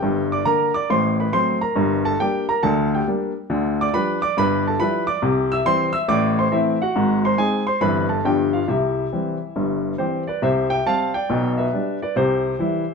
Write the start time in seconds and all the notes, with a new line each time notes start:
Already playing: G4 G5
0.02 G1 G2
0.32 D5 D6
0.45 D3 A#3 A#4 A#5
0.74 D5 D6
0.90 A1 A2 C5 C6
1.20 B4 B5
1.33 F#3 A3 C4 C5 C6
1.61 A#4 A#5
1.75 G1 G2
2.05 A4 A5
2.20 G3 A#3 D4 G4 G5
2.49 A#4 A#5
2.63 D2 D3 A4 A5
2.95 G4 G5
3.07 G3 A#3 D4
3.50 D2 D3
3.81 D5 D6
3.94 F3 G3 D4 B4 B5
4.22 D5 D6
4.37 G1 G2 B4 B5
4.67 A4 A5
4.79 F3 G3 E4 B4 B5
5.07 D5 D6
5.22 C2 C3
5.52 E5 E6
5.65 E3 G3 C4 C5 C6
5.93 E5 E6
6.08 A1 A2 D5 D6
6.39 C5 C6
6.52 E3 A3 C4 E4 E5
6.82 F#4 F#5
6.96 G#1 G#2
7.25 C5 C6
7.38 G#3 C4 D#4 G#4 G#5
7.67 C5 C6
7.81 G1 G2 E3 C4 E4 B4 B5
8.09 A4 A5
8.25 G1 G2 F3 B3 D4 G4 G5
8.53 F4 F5
8.68 C2 C3 E4 E5
9.12 E3 G3 C4
9.56 G1 G2
9.98 E3 G3 C4 G4 C5
10.27 B4 D5
10.42 C2 C3 C5 E5
10.70 E5 G5
10.86 G3 C4 F5 A5
11.14 D5 G5
11.30 B1 B2
11.58 B4 E5
11.73 G3 D4
12.02 B4 D5
12.16 C2 C3 G4 C5
12.59 E3 G3 E4